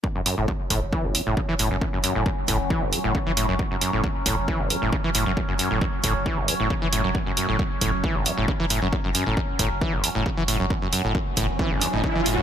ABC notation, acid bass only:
X:1
M:4/4
L:1/16
Q:1/4=135
K:F#m
V:1 name="Acid bass" clef=bass
F,, F,, F,, A,, F,, z A,, z E, F,,, F,, A,, C, E, A,, F,, | F,, F,, F,, A,, F,, z A,, z E, F,,, F,, A,, C, E, A,, F,, | F,, F,, F,, A,, F,, z A,, z E, F,,, F,, A,, C, E, A,, F,, | F,, F,, F,, A,, F,, z A,, z E, F,,, F,, A,, C, E, A,, F,, |
F,, F,, F,, A,, F,, z A,, z E, F,,, F,, A,, C, E, A,, F,, | F,, F,, F,, A,, F,, z A,, z E, F,,, F,, A,, C, E, A,, F,, | F,, F,, F,, A,, F,, z A,, z E, F,,, F,, A,, C, E, A,, F,, |]